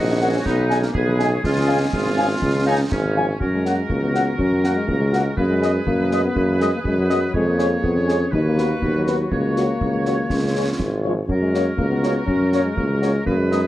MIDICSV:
0, 0, Header, 1, 9, 480
1, 0, Start_track
1, 0, Key_signature, 6, "major"
1, 0, Tempo, 492611
1, 445, Time_signature, 2, 2, 24, 8
1, 13322, End_track
2, 0, Start_track
2, 0, Title_t, "Trumpet section"
2, 0, Program_c, 0, 61
2, 201, Note_on_c, 0, 78, 51
2, 288, Note_off_c, 0, 78, 0
2, 683, Note_on_c, 0, 80, 52
2, 769, Note_off_c, 0, 80, 0
2, 1161, Note_on_c, 0, 80, 47
2, 1247, Note_off_c, 0, 80, 0
2, 1635, Note_on_c, 0, 80, 44
2, 1723, Note_off_c, 0, 80, 0
2, 2122, Note_on_c, 0, 80, 49
2, 2208, Note_off_c, 0, 80, 0
2, 2605, Note_on_c, 0, 80, 48
2, 2690, Note_off_c, 0, 80, 0
2, 3081, Note_on_c, 0, 80, 47
2, 3166, Note_off_c, 0, 80, 0
2, 3556, Note_on_c, 0, 78, 35
2, 3643, Note_off_c, 0, 78, 0
2, 4039, Note_on_c, 0, 78, 35
2, 4125, Note_off_c, 0, 78, 0
2, 4522, Note_on_c, 0, 78, 37
2, 4607, Note_off_c, 0, 78, 0
2, 4995, Note_on_c, 0, 78, 38
2, 5082, Note_off_c, 0, 78, 0
2, 5481, Note_on_c, 0, 75, 41
2, 5566, Note_off_c, 0, 75, 0
2, 5959, Note_on_c, 0, 75, 44
2, 6045, Note_off_c, 0, 75, 0
2, 6440, Note_on_c, 0, 75, 47
2, 6526, Note_off_c, 0, 75, 0
2, 6916, Note_on_c, 0, 75, 44
2, 7003, Note_off_c, 0, 75, 0
2, 7395, Note_on_c, 0, 73, 45
2, 7482, Note_off_c, 0, 73, 0
2, 7885, Note_on_c, 0, 73, 44
2, 7970, Note_off_c, 0, 73, 0
2, 8355, Note_on_c, 0, 71, 38
2, 8443, Note_off_c, 0, 71, 0
2, 8839, Note_on_c, 0, 71, 39
2, 8926, Note_off_c, 0, 71, 0
2, 9315, Note_on_c, 0, 73, 33
2, 9402, Note_off_c, 0, 73, 0
2, 9803, Note_on_c, 0, 73, 35
2, 9889, Note_off_c, 0, 73, 0
2, 10283, Note_on_c, 0, 73, 33
2, 10370, Note_off_c, 0, 73, 0
2, 10765, Note_on_c, 0, 73, 31
2, 10851, Note_off_c, 0, 73, 0
2, 11261, Note_on_c, 0, 73, 36
2, 11343, Note_off_c, 0, 73, 0
2, 11725, Note_on_c, 0, 73, 38
2, 11812, Note_off_c, 0, 73, 0
2, 12203, Note_on_c, 0, 73, 37
2, 12290, Note_off_c, 0, 73, 0
2, 12695, Note_on_c, 0, 73, 39
2, 12779, Note_off_c, 0, 73, 0
2, 13165, Note_on_c, 0, 75, 38
2, 13252, Note_off_c, 0, 75, 0
2, 13322, End_track
3, 0, Start_track
3, 0, Title_t, "Flute section"
3, 0, Program_c, 1, 73
3, 0, Note_on_c, 1, 75, 73
3, 209, Note_off_c, 1, 75, 0
3, 209, Note_on_c, 1, 73, 68
3, 430, Note_off_c, 1, 73, 0
3, 456, Note_on_c, 1, 71, 76
3, 805, Note_on_c, 1, 70, 68
3, 809, Note_off_c, 1, 71, 0
3, 918, Note_on_c, 1, 71, 63
3, 924, Note_off_c, 1, 70, 0
3, 1254, Note_off_c, 1, 71, 0
3, 1285, Note_on_c, 1, 73, 61
3, 1395, Note_off_c, 1, 73, 0
3, 1411, Note_on_c, 1, 68, 69
3, 2804, Note_off_c, 1, 68, 0
3, 13322, End_track
4, 0, Start_track
4, 0, Title_t, "Woodwind section"
4, 0, Program_c, 2, 71
4, 0, Note_on_c, 2, 66, 60
4, 414, Note_off_c, 2, 66, 0
4, 446, Note_on_c, 2, 63, 60
4, 785, Note_off_c, 2, 63, 0
4, 918, Note_on_c, 2, 68, 58
4, 1366, Note_off_c, 2, 68, 0
4, 1405, Note_on_c, 2, 65, 55
4, 1804, Note_off_c, 2, 65, 0
4, 1891, Note_on_c, 2, 65, 64
4, 2565, Note_off_c, 2, 65, 0
4, 2597, Note_on_c, 2, 63, 62
4, 2705, Note_off_c, 2, 63, 0
4, 2838, Note_on_c, 2, 61, 58
4, 3284, Note_off_c, 2, 61, 0
4, 3315, Note_on_c, 2, 70, 41
4, 3319, Note_on_c, 2, 66, 41
4, 5196, Note_off_c, 2, 70, 0
4, 5198, Note_off_c, 2, 66, 0
4, 5232, Note_on_c, 2, 68, 47
4, 5237, Note_on_c, 2, 71, 46
4, 7116, Note_off_c, 2, 68, 0
4, 7119, Note_off_c, 2, 71, 0
4, 7154, Note_on_c, 2, 68, 46
4, 7155, Note_on_c, 2, 73, 50
4, 8078, Note_off_c, 2, 68, 0
4, 8106, Note_on_c, 2, 71, 47
4, 8110, Note_on_c, 2, 66, 44
4, 8117, Note_off_c, 2, 73, 0
4, 8917, Note_off_c, 2, 71, 0
4, 9082, Note_on_c, 2, 73, 43
4, 10037, Note_off_c, 2, 66, 0
4, 10038, Note_on_c, 2, 65, 37
4, 10725, Note_off_c, 2, 73, 0
4, 10761, Note_off_c, 2, 65, 0
4, 11004, Note_on_c, 2, 66, 42
4, 11008, Note_on_c, 2, 70, 43
4, 12888, Note_off_c, 2, 66, 0
4, 12890, Note_off_c, 2, 70, 0
4, 12920, Note_on_c, 2, 68, 42
4, 12920, Note_on_c, 2, 71, 44
4, 13322, Note_off_c, 2, 68, 0
4, 13322, Note_off_c, 2, 71, 0
4, 13322, End_track
5, 0, Start_track
5, 0, Title_t, "French horn section"
5, 0, Program_c, 3, 60
5, 208, Note_on_c, 3, 70, 57
5, 208, Note_on_c, 3, 75, 52
5, 210, Note_off_c, 3, 70, 0
5, 210, Note_on_c, 3, 70, 54
5, 293, Note_off_c, 3, 75, 0
5, 295, Note_off_c, 3, 70, 0
5, 683, Note_on_c, 3, 68, 49
5, 683, Note_on_c, 3, 75, 53
5, 685, Note_off_c, 3, 75, 0
5, 685, Note_on_c, 3, 75, 51
5, 770, Note_off_c, 3, 68, 0
5, 771, Note_off_c, 3, 75, 0
5, 1160, Note_on_c, 3, 75, 52
5, 1163, Note_on_c, 3, 68, 57
5, 1165, Note_off_c, 3, 75, 0
5, 1165, Note_on_c, 3, 75, 52
5, 1249, Note_off_c, 3, 68, 0
5, 1250, Note_off_c, 3, 75, 0
5, 1635, Note_on_c, 3, 68, 50
5, 1636, Note_on_c, 3, 73, 52
5, 1637, Note_on_c, 3, 77, 53
5, 1722, Note_off_c, 3, 68, 0
5, 1723, Note_off_c, 3, 73, 0
5, 1724, Note_off_c, 3, 77, 0
5, 2115, Note_on_c, 3, 77, 48
5, 2116, Note_on_c, 3, 68, 53
5, 2116, Note_on_c, 3, 73, 45
5, 2202, Note_off_c, 3, 77, 0
5, 2203, Note_off_c, 3, 68, 0
5, 2203, Note_off_c, 3, 73, 0
5, 2595, Note_on_c, 3, 68, 50
5, 2595, Note_on_c, 3, 77, 53
5, 2597, Note_on_c, 3, 73, 50
5, 2682, Note_off_c, 3, 68, 0
5, 2682, Note_off_c, 3, 77, 0
5, 2683, Note_off_c, 3, 73, 0
5, 3072, Note_on_c, 3, 77, 48
5, 3074, Note_on_c, 3, 68, 52
5, 3074, Note_on_c, 3, 73, 50
5, 3159, Note_off_c, 3, 77, 0
5, 3161, Note_off_c, 3, 68, 0
5, 3161, Note_off_c, 3, 73, 0
5, 3550, Note_on_c, 3, 58, 40
5, 3550, Note_on_c, 3, 61, 36
5, 3552, Note_on_c, 3, 66, 34
5, 3638, Note_off_c, 3, 58, 0
5, 3638, Note_off_c, 3, 61, 0
5, 3639, Note_off_c, 3, 66, 0
5, 4027, Note_on_c, 3, 58, 38
5, 4030, Note_on_c, 3, 61, 38
5, 4031, Note_on_c, 3, 66, 40
5, 4115, Note_off_c, 3, 58, 0
5, 4118, Note_off_c, 3, 61, 0
5, 4118, Note_off_c, 3, 66, 0
5, 4513, Note_on_c, 3, 66, 36
5, 4514, Note_on_c, 3, 58, 39
5, 4516, Note_on_c, 3, 61, 40
5, 4600, Note_off_c, 3, 66, 0
5, 4601, Note_off_c, 3, 58, 0
5, 4602, Note_off_c, 3, 61, 0
5, 4993, Note_on_c, 3, 61, 41
5, 4994, Note_on_c, 3, 58, 42
5, 4994, Note_on_c, 3, 66, 41
5, 5080, Note_off_c, 3, 61, 0
5, 5081, Note_off_c, 3, 58, 0
5, 5081, Note_off_c, 3, 66, 0
5, 5469, Note_on_c, 3, 56, 44
5, 5470, Note_on_c, 3, 68, 40
5, 5472, Note_on_c, 3, 59, 45
5, 5557, Note_off_c, 3, 56, 0
5, 5558, Note_off_c, 3, 68, 0
5, 5559, Note_off_c, 3, 59, 0
5, 5951, Note_on_c, 3, 59, 47
5, 5952, Note_on_c, 3, 68, 43
5, 5954, Note_on_c, 3, 56, 46
5, 6039, Note_off_c, 3, 59, 0
5, 6039, Note_off_c, 3, 68, 0
5, 6041, Note_off_c, 3, 56, 0
5, 6433, Note_on_c, 3, 59, 47
5, 6433, Note_on_c, 3, 68, 47
5, 6435, Note_on_c, 3, 56, 45
5, 6520, Note_off_c, 3, 68, 0
5, 6521, Note_off_c, 3, 59, 0
5, 6522, Note_off_c, 3, 56, 0
5, 6916, Note_on_c, 3, 59, 43
5, 6916, Note_on_c, 3, 68, 44
5, 6918, Note_on_c, 3, 56, 50
5, 7003, Note_off_c, 3, 59, 0
5, 7003, Note_off_c, 3, 68, 0
5, 7004, Note_off_c, 3, 56, 0
5, 7392, Note_on_c, 3, 61, 47
5, 7394, Note_on_c, 3, 56, 44
5, 7395, Note_on_c, 3, 68, 42
5, 7480, Note_off_c, 3, 61, 0
5, 7482, Note_off_c, 3, 56, 0
5, 7482, Note_off_c, 3, 68, 0
5, 7871, Note_on_c, 3, 61, 39
5, 7872, Note_on_c, 3, 56, 43
5, 7872, Note_on_c, 3, 68, 44
5, 7959, Note_off_c, 3, 61, 0
5, 7960, Note_off_c, 3, 56, 0
5, 7960, Note_off_c, 3, 68, 0
5, 8356, Note_on_c, 3, 59, 41
5, 8358, Note_on_c, 3, 63, 43
5, 8359, Note_on_c, 3, 66, 41
5, 8443, Note_off_c, 3, 59, 0
5, 8445, Note_off_c, 3, 63, 0
5, 8446, Note_off_c, 3, 66, 0
5, 8833, Note_on_c, 3, 63, 39
5, 8834, Note_on_c, 3, 59, 39
5, 8835, Note_on_c, 3, 66, 38
5, 8921, Note_off_c, 3, 59, 0
5, 8921, Note_off_c, 3, 63, 0
5, 8922, Note_off_c, 3, 66, 0
5, 9320, Note_on_c, 3, 66, 37
5, 9321, Note_on_c, 3, 61, 36
5, 9322, Note_on_c, 3, 58, 38
5, 9407, Note_off_c, 3, 61, 0
5, 9407, Note_off_c, 3, 66, 0
5, 9408, Note_off_c, 3, 58, 0
5, 9798, Note_on_c, 3, 61, 37
5, 9799, Note_on_c, 3, 58, 36
5, 9799, Note_on_c, 3, 66, 35
5, 9885, Note_off_c, 3, 61, 0
5, 9886, Note_off_c, 3, 58, 0
5, 9886, Note_off_c, 3, 66, 0
5, 10276, Note_on_c, 3, 56, 36
5, 10276, Note_on_c, 3, 61, 35
5, 10277, Note_on_c, 3, 65, 33
5, 10364, Note_off_c, 3, 56, 0
5, 10364, Note_off_c, 3, 61, 0
5, 10364, Note_off_c, 3, 65, 0
5, 10758, Note_on_c, 3, 56, 35
5, 10758, Note_on_c, 3, 61, 34
5, 10758, Note_on_c, 3, 65, 34
5, 10846, Note_off_c, 3, 56, 0
5, 10846, Note_off_c, 3, 61, 0
5, 10846, Note_off_c, 3, 65, 0
5, 11239, Note_on_c, 3, 61, 41
5, 11239, Note_on_c, 3, 66, 38
5, 11240, Note_on_c, 3, 58, 39
5, 11326, Note_off_c, 3, 61, 0
5, 11326, Note_off_c, 3, 66, 0
5, 11328, Note_off_c, 3, 58, 0
5, 11715, Note_on_c, 3, 58, 39
5, 11718, Note_on_c, 3, 61, 39
5, 11718, Note_on_c, 3, 66, 39
5, 11804, Note_off_c, 3, 58, 0
5, 11806, Note_off_c, 3, 61, 0
5, 11806, Note_off_c, 3, 66, 0
5, 12203, Note_on_c, 3, 66, 42
5, 12204, Note_on_c, 3, 58, 39
5, 12206, Note_on_c, 3, 61, 40
5, 12290, Note_off_c, 3, 66, 0
5, 12291, Note_off_c, 3, 58, 0
5, 12292, Note_off_c, 3, 61, 0
5, 12682, Note_on_c, 3, 58, 39
5, 12682, Note_on_c, 3, 61, 36
5, 12682, Note_on_c, 3, 66, 40
5, 12770, Note_off_c, 3, 58, 0
5, 12770, Note_off_c, 3, 61, 0
5, 12770, Note_off_c, 3, 66, 0
5, 13162, Note_on_c, 3, 56, 42
5, 13162, Note_on_c, 3, 59, 44
5, 13162, Note_on_c, 3, 63, 44
5, 13250, Note_off_c, 3, 56, 0
5, 13250, Note_off_c, 3, 59, 0
5, 13250, Note_off_c, 3, 63, 0
5, 13322, End_track
6, 0, Start_track
6, 0, Title_t, "Trombone section"
6, 0, Program_c, 4, 61
6, 0, Note_on_c, 4, 63, 90
6, 209, Note_on_c, 4, 61, 83
6, 213, Note_off_c, 4, 63, 0
6, 446, Note_on_c, 4, 59, 84
6, 447, Note_off_c, 4, 61, 0
6, 779, Note_off_c, 4, 59, 0
6, 822, Note_on_c, 4, 58, 69
6, 925, Note_off_c, 4, 58, 0
6, 940, Note_on_c, 4, 59, 80
6, 1291, Note_off_c, 4, 59, 0
6, 1294, Note_on_c, 4, 61, 71
6, 1345, Note_off_c, 4, 61, 0
6, 1412, Note_on_c, 4, 56, 82
6, 2804, Note_off_c, 4, 56, 0
6, 13322, End_track
7, 0, Start_track
7, 0, Title_t, "Euphonium"
7, 0, Program_c, 5, 58
7, 3069, Note_on_c, 5, 53, 55
7, 3179, Note_off_c, 5, 53, 0
7, 3314, Note_on_c, 5, 54, 57
7, 3368, Note_off_c, 5, 54, 0
7, 3439, Note_on_c, 5, 56, 51
7, 3799, Note_on_c, 5, 58, 52
7, 3813, Note_off_c, 5, 56, 0
7, 3908, Note_off_c, 5, 58, 0
7, 3914, Note_on_c, 5, 59, 55
7, 4250, Note_off_c, 5, 59, 0
7, 4268, Note_on_c, 5, 61, 67
7, 4606, Note_off_c, 5, 61, 0
7, 4634, Note_on_c, 5, 56, 57
7, 4751, Note_on_c, 5, 58, 51
7, 4765, Note_off_c, 5, 56, 0
7, 4860, Note_off_c, 5, 58, 0
7, 4866, Note_on_c, 5, 56, 55
7, 5205, Note_off_c, 5, 56, 0
7, 5242, Note_on_c, 5, 58, 75
7, 5294, Note_off_c, 5, 58, 0
7, 5357, Note_on_c, 5, 56, 59
7, 5691, Note_off_c, 5, 56, 0
7, 5713, Note_on_c, 5, 58, 69
7, 6049, Note_off_c, 5, 58, 0
7, 6084, Note_on_c, 5, 59, 72
7, 6196, Note_on_c, 5, 58, 71
7, 6210, Note_off_c, 5, 59, 0
7, 6433, Note_off_c, 5, 58, 0
7, 6439, Note_on_c, 5, 56, 68
7, 6492, Note_off_c, 5, 56, 0
7, 6572, Note_on_c, 5, 58, 68
7, 6623, Note_off_c, 5, 58, 0
7, 6681, Note_on_c, 5, 56, 65
7, 6791, Note_off_c, 5, 56, 0
7, 6805, Note_on_c, 5, 54, 61
7, 6913, Note_off_c, 5, 54, 0
7, 6923, Note_on_c, 5, 54, 63
7, 7144, Note_off_c, 5, 54, 0
7, 7167, Note_on_c, 5, 56, 78
7, 7285, Note_on_c, 5, 58, 67
7, 7300, Note_off_c, 5, 56, 0
7, 7638, Note_on_c, 5, 59, 66
7, 7652, Note_off_c, 5, 58, 0
7, 7763, Note_on_c, 5, 61, 71
7, 7778, Note_off_c, 5, 59, 0
7, 8121, Note_off_c, 5, 61, 0
7, 8131, Note_on_c, 5, 63, 78
7, 8182, Note_off_c, 5, 63, 0
7, 8238, Note_on_c, 5, 58, 62
7, 8598, Note_on_c, 5, 59, 55
7, 8613, Note_off_c, 5, 58, 0
7, 8719, Note_off_c, 5, 59, 0
7, 8727, Note_on_c, 5, 54, 52
7, 9059, Note_off_c, 5, 54, 0
7, 9082, Note_on_c, 5, 58, 67
7, 10597, Note_off_c, 5, 58, 0
7, 10762, Note_on_c, 5, 53, 45
7, 10871, Note_off_c, 5, 53, 0
7, 10992, Note_on_c, 5, 54, 60
7, 11049, Note_off_c, 5, 54, 0
7, 11110, Note_on_c, 5, 56, 50
7, 11452, Note_off_c, 5, 56, 0
7, 11467, Note_on_c, 5, 58, 61
7, 11584, Note_off_c, 5, 58, 0
7, 11590, Note_on_c, 5, 59, 56
7, 11932, Note_off_c, 5, 59, 0
7, 11944, Note_on_c, 5, 61, 65
7, 12289, Note_off_c, 5, 61, 0
7, 12316, Note_on_c, 5, 56, 57
7, 12432, Note_on_c, 5, 58, 56
7, 12446, Note_off_c, 5, 56, 0
7, 12549, Note_on_c, 5, 56, 57
7, 12563, Note_off_c, 5, 58, 0
7, 12911, Note_on_c, 5, 58, 70
7, 12926, Note_off_c, 5, 56, 0
7, 13035, Note_on_c, 5, 56, 55
7, 13050, Note_off_c, 5, 58, 0
7, 13322, Note_off_c, 5, 56, 0
7, 13322, End_track
8, 0, Start_track
8, 0, Title_t, "Tuba"
8, 0, Program_c, 6, 58
8, 0, Note_on_c, 6, 34, 74
8, 367, Note_off_c, 6, 34, 0
8, 445, Note_on_c, 6, 35, 69
8, 843, Note_off_c, 6, 35, 0
8, 925, Note_on_c, 6, 35, 62
8, 1322, Note_off_c, 6, 35, 0
8, 1405, Note_on_c, 6, 37, 71
8, 1802, Note_off_c, 6, 37, 0
8, 1878, Note_on_c, 6, 32, 53
8, 2278, Note_off_c, 6, 32, 0
8, 2358, Note_on_c, 6, 37, 62
8, 2758, Note_off_c, 6, 37, 0
8, 2836, Note_on_c, 6, 32, 60
8, 3236, Note_off_c, 6, 32, 0
8, 3312, Note_on_c, 6, 42, 44
8, 3714, Note_off_c, 6, 42, 0
8, 3792, Note_on_c, 6, 37, 42
8, 4194, Note_off_c, 6, 37, 0
8, 4272, Note_on_c, 6, 42, 47
8, 4674, Note_off_c, 6, 42, 0
8, 4750, Note_on_c, 6, 37, 50
8, 5153, Note_off_c, 6, 37, 0
8, 5237, Note_on_c, 6, 42, 56
8, 5636, Note_off_c, 6, 42, 0
8, 5713, Note_on_c, 6, 42, 52
8, 6115, Note_off_c, 6, 42, 0
8, 6188, Note_on_c, 6, 42, 61
8, 6546, Note_off_c, 6, 42, 0
8, 6668, Note_on_c, 6, 42, 53
8, 7072, Note_off_c, 6, 42, 0
8, 7152, Note_on_c, 6, 41, 61
8, 7555, Note_off_c, 6, 41, 0
8, 7627, Note_on_c, 6, 41, 52
8, 8032, Note_off_c, 6, 41, 0
8, 8108, Note_on_c, 6, 39, 54
8, 8513, Note_off_c, 6, 39, 0
8, 8589, Note_on_c, 6, 39, 47
8, 8994, Note_off_c, 6, 39, 0
8, 9072, Note_on_c, 6, 37, 45
8, 9476, Note_off_c, 6, 37, 0
8, 9556, Note_on_c, 6, 37, 37
8, 9959, Note_off_c, 6, 37, 0
8, 10037, Note_on_c, 6, 37, 48
8, 10440, Note_off_c, 6, 37, 0
8, 10518, Note_on_c, 6, 32, 45
8, 10921, Note_off_c, 6, 32, 0
8, 10994, Note_on_c, 6, 42, 48
8, 11399, Note_off_c, 6, 42, 0
8, 11474, Note_on_c, 6, 37, 43
8, 11879, Note_off_c, 6, 37, 0
8, 11955, Note_on_c, 6, 42, 52
8, 12360, Note_off_c, 6, 42, 0
8, 12442, Note_on_c, 6, 37, 42
8, 12845, Note_off_c, 6, 37, 0
8, 12921, Note_on_c, 6, 42, 55
8, 13322, Note_off_c, 6, 42, 0
8, 13322, End_track
9, 0, Start_track
9, 0, Title_t, "Drums"
9, 447, Note_on_c, 9, 35, 73
9, 447, Note_on_c, 9, 38, 66
9, 544, Note_off_c, 9, 35, 0
9, 544, Note_off_c, 9, 38, 0
9, 686, Note_on_c, 9, 38, 47
9, 784, Note_off_c, 9, 38, 0
9, 804, Note_on_c, 9, 38, 51
9, 902, Note_off_c, 9, 38, 0
9, 923, Note_on_c, 9, 35, 75
9, 1021, Note_off_c, 9, 35, 0
9, 1165, Note_on_c, 9, 38, 43
9, 1262, Note_off_c, 9, 38, 0
9, 1405, Note_on_c, 9, 35, 71
9, 1405, Note_on_c, 9, 38, 59
9, 1503, Note_off_c, 9, 35, 0
9, 1503, Note_off_c, 9, 38, 0
9, 1882, Note_on_c, 9, 35, 77
9, 1882, Note_on_c, 9, 38, 68
9, 1980, Note_off_c, 9, 35, 0
9, 1980, Note_off_c, 9, 38, 0
9, 2360, Note_on_c, 9, 35, 71
9, 2360, Note_on_c, 9, 38, 56
9, 2457, Note_off_c, 9, 35, 0
9, 2457, Note_off_c, 9, 38, 0
9, 2844, Note_on_c, 9, 35, 74
9, 2844, Note_on_c, 9, 38, 78
9, 2942, Note_off_c, 9, 35, 0
9, 2942, Note_off_c, 9, 38, 0
9, 3321, Note_on_c, 9, 35, 57
9, 3419, Note_off_c, 9, 35, 0
9, 3562, Note_on_c, 9, 38, 28
9, 3660, Note_off_c, 9, 38, 0
9, 3798, Note_on_c, 9, 35, 60
9, 3896, Note_off_c, 9, 35, 0
9, 4040, Note_on_c, 9, 38, 27
9, 4138, Note_off_c, 9, 38, 0
9, 4279, Note_on_c, 9, 35, 57
9, 4376, Note_off_c, 9, 35, 0
9, 4520, Note_on_c, 9, 38, 31
9, 4618, Note_off_c, 9, 38, 0
9, 4760, Note_on_c, 9, 35, 58
9, 4857, Note_off_c, 9, 35, 0
9, 5000, Note_on_c, 9, 38, 28
9, 5098, Note_off_c, 9, 38, 0
9, 5237, Note_on_c, 9, 35, 60
9, 5334, Note_off_c, 9, 35, 0
9, 5481, Note_on_c, 9, 38, 28
9, 5578, Note_off_c, 9, 38, 0
9, 5718, Note_on_c, 9, 35, 60
9, 5816, Note_off_c, 9, 35, 0
9, 5958, Note_on_c, 9, 38, 27
9, 6055, Note_off_c, 9, 38, 0
9, 6200, Note_on_c, 9, 35, 58
9, 6298, Note_off_c, 9, 35, 0
9, 6436, Note_on_c, 9, 38, 28
9, 6533, Note_off_c, 9, 38, 0
9, 6676, Note_on_c, 9, 35, 62
9, 6773, Note_off_c, 9, 35, 0
9, 6916, Note_on_c, 9, 38, 29
9, 7014, Note_off_c, 9, 38, 0
9, 7152, Note_on_c, 9, 35, 57
9, 7249, Note_off_c, 9, 35, 0
9, 7394, Note_on_c, 9, 38, 28
9, 7492, Note_off_c, 9, 38, 0
9, 7637, Note_on_c, 9, 35, 63
9, 7734, Note_off_c, 9, 35, 0
9, 7878, Note_on_c, 9, 38, 30
9, 7976, Note_off_c, 9, 38, 0
9, 8118, Note_on_c, 9, 35, 64
9, 8215, Note_off_c, 9, 35, 0
9, 8360, Note_on_c, 9, 38, 30
9, 8457, Note_off_c, 9, 38, 0
9, 8598, Note_on_c, 9, 35, 61
9, 8696, Note_off_c, 9, 35, 0
9, 8837, Note_on_c, 9, 38, 28
9, 8935, Note_off_c, 9, 38, 0
9, 9078, Note_on_c, 9, 35, 63
9, 9175, Note_off_c, 9, 35, 0
9, 9319, Note_on_c, 9, 38, 28
9, 9416, Note_off_c, 9, 38, 0
9, 9561, Note_on_c, 9, 35, 64
9, 9658, Note_off_c, 9, 35, 0
9, 9798, Note_on_c, 9, 38, 25
9, 9895, Note_off_c, 9, 38, 0
9, 10037, Note_on_c, 9, 35, 59
9, 10037, Note_on_c, 9, 38, 46
9, 10134, Note_off_c, 9, 35, 0
9, 10134, Note_off_c, 9, 38, 0
9, 10519, Note_on_c, 9, 35, 58
9, 10519, Note_on_c, 9, 38, 47
9, 10616, Note_off_c, 9, 35, 0
9, 10616, Note_off_c, 9, 38, 0
9, 11002, Note_on_c, 9, 35, 59
9, 11099, Note_off_c, 9, 35, 0
9, 11248, Note_on_c, 9, 38, 27
9, 11346, Note_off_c, 9, 38, 0
9, 11481, Note_on_c, 9, 35, 62
9, 11579, Note_off_c, 9, 35, 0
9, 11724, Note_on_c, 9, 38, 26
9, 11822, Note_off_c, 9, 38, 0
9, 11962, Note_on_c, 9, 35, 59
9, 12060, Note_off_c, 9, 35, 0
9, 12204, Note_on_c, 9, 38, 28
9, 12301, Note_off_c, 9, 38, 0
9, 12447, Note_on_c, 9, 35, 62
9, 12544, Note_off_c, 9, 35, 0
9, 12689, Note_on_c, 9, 38, 26
9, 12786, Note_off_c, 9, 38, 0
9, 12928, Note_on_c, 9, 35, 62
9, 13025, Note_off_c, 9, 35, 0
9, 13171, Note_on_c, 9, 38, 28
9, 13268, Note_off_c, 9, 38, 0
9, 13322, End_track
0, 0, End_of_file